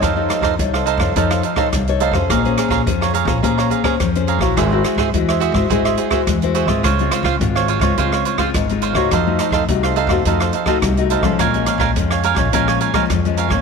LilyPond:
<<
  \new Staff \with { instrumentName = "Cavaquinho" } { \time 4/4 \key f \minor \tempo 4 = 106 <ees' a' c'' f''>8 <ees' a' c'' f''>16 <ees' a' c'' f''>16 r16 <a' c'' f''>16 <ees' a' c'' f''>16 <a' c'' f''>16 <ees' a' c'' f''>16 <a' c'' f''>16 <ees' a' c'' f''>16 <ees' a' c'' f''>16 r8 <ees' a' c'' f''>16 <a' c'' f''>16 | <aes' des'' f'' bes''>8 <aes' des'' f'' bes''>16 <aes' des'' f'' bes''>16 r16 <des'' f'' bes''>16 <aes' des'' f'' bes''>16 <des'' f'' bes''>16 <aes' des'' f'' bes''>16 <des'' f'' bes''>16 <aes' des'' f'' bes''>16 <aes' des'' f'' bes''>16 r8 <aes' des'' f'' bes''>16 <des'' f'' bes''>16 | <ges' aes' c'' e''>8 <ges' aes' c'' e''>16 <ges' aes' c'' e''>16 r16 <aes' c'' e''>16 <ges' aes' c'' e''>16 <aes' c'' e''>16 <ges' aes' c'' e''>16 <aes' c'' e''>16 <ges' aes' c'' e''>16 <ges' aes' c'' e''>16 r8 <ges' aes' c'' e''>16 <aes' c'' e''>16 | <f' c'' des'' f''>8 <f' c'' des'' f''>16 <f' c'' des'' f''>16 r16 <c'' des'' f''>16 <f' c'' des'' f''>16 <c'' des'' f''>16 <f' c'' des'' f''>16 <c'' des'' f''>16 <f' c'' des'' f''>16 <f' c'' des'' f''>16 r8 <f' c'' des'' f''>16 <c'' des'' f''>16 |
<ees' a' c'' f''>8 <ees' a' c'' f''>16 <ees' a' c'' f''>16 r16 <a' c'' f''>16 <ees' a' c'' f''>16 <a' c'' f''>16 <ees' a' c'' f''>16 <a' c'' f''>16 <ees' a' c'' f''>16 <ees' a' c'' f''>16 r8 <ees' a' c'' f''>16 <a' c'' f''>16 | <bes' des'' f'' aes''>8 <bes' des'' f'' aes''>16 <bes' des'' f'' aes''>16 r16 <des'' f'' aes''>16 <bes' des'' f'' aes''>16 <des'' f'' aes''>16 <bes' des'' f'' aes''>16 <des'' f'' aes''>16 <bes' des'' f'' aes''>16 <bes' des'' f'' aes''>16 r8 <bes' des'' f'' aes''>16 <des'' f'' aes''>16 | }
  \new Staff \with { instrumentName = "Nylon-string guitar" } { \time 4/4 \key f \minor << { <ees' a' des''>16 <ees' a' des''>8. <ees' a' des''>8 r16 <ees' a' des''>16 <ees' a' des''>8 r16 <ees' a' des''>8 <ees' a' des''>8 <des' aes' c''>16~ | <des' aes' c''>16 <des' aes' c''>8. <des' aes' c''>8 r16 <des' aes' c''>16 <des' aes' c''>8. <des' aes' c''>8 <des' aes' c''>8 <e' ges' c''>16~ | <e' ges' c''>16 <e' ges' c''>8. <e' ges' c''>8. <e' ges' c''>16 <e' ges' c''>8. <e' ges' c''>8 <e' ges' c''>8 <aes c' f'>16~ | <aes c' f'>16 <aes c' f'>8. <aes c' f'>8. <aes c' f'>16 <aes c' f'>8. <aes c' f'>8 <aes c' f'>8 <a ees' ges'>16~ |
<a ees' ges'>16 <a ees' ges'>8. <a ees' ges'>8. <a ees' ges'>16 <a ees' ges'>8 r16 <a ees' ges'>8 <a ees' ges'>8 <f aes des'>16~ | <f aes des'>16 <f aes des'>8. <f aes des'>8. <f aes des'>16 <f aes des'>8. <f aes des'>8 <f aes des'>8 <f bes des'>16 | } \\ { f4 c4 f4 c4 | bes4 f4 bes4 f4 | aes4 aes4 aes4 aes4 | des4 aes,4 des4 aes,4 |
f4 c4 f4 c4 | bes,4 f,4 bes,4 f,4 | } >> }
  \new Staff \with { instrumentName = "Upright bass" } { \clef bass \time 4/4 \key f \minor f,8 r16 f,16 c,8. f,16 f,8 r8 c,8. f,16 | bes,,8 r16 bes,,16 f,8. bes,,16 bes,,8 r8 f,8. bes,,16 | aes,,8 r16 aes,,16 e,8. aes,,16 aes,,8 r8 e,8. aes,,16 | des,8 r16 des,16 aes,,8. des,16 des,8 r8 aes,,8. des,16 |
f,8 r16 f,16 c,8. f,16 f,8 r8 c,8. c,16 | bes,,8 r16 bes,,16 f,8. bes,,16 bes,,8 r8 f,8. aes,,16 | }
  \new DrumStaff \with { instrumentName = "Drums" } \drummode { \time 4/4 <hh bd ss>8 <hh ss>16 <bd ss>16 <hh bd>16 ss16 hh16 <bd ss>16 <hh bd>16 <hh ss>16 hh16 <bd ss>16 <hh bd ss>16 hh16 hh16 <bd ss>16 | <hh bd ss>16 hh16 <hh ss>16 <bd ss>16 <hh bd>16 ss16 hh16 <hh bd ss>16 <hh bd>16 ss16 hh16 <bd ss>16 <hh bd ss>16 hh16 hh16 <bd ss>16 | <hh bd ss>8 <hh ss>16 <bd ss>16 <hh bd>16 ss16 hh16 <bd ss>16 <hh bd>16 <hh ss>16 hh16 <bd ss>16 <hh bd ss>16 hh16 hh16 <bd ss>16 | <hh bd ss>16 hh16 <hh ss>16 <bd ss>16 <hh bd>16 ss16 hh16 <hh bd ss>16 <hh bd>16 ss16 hh16 <bd ss>16 <hh bd ss>16 hh16 hh16 <bd ss>16 |
<hh bd ss>8 <hh ss>16 <bd ss>16 <hh bd>16 ss16 hh16 <bd ss>16 <hh bd>16 <hh ss>16 hh16 <bd ss>16 <hh bd ss>16 hh16 hh16 <bd ss>16 | <hh bd ss>16 hh16 <hh ss>16 <bd ss>16 <hh bd>16 ss16 hh16 <hh bd ss>16 <hh bd>16 ss16 hh16 <bd ss>16 <hh bd ss>16 hh16 hh16 <bd ss>16 | }
>>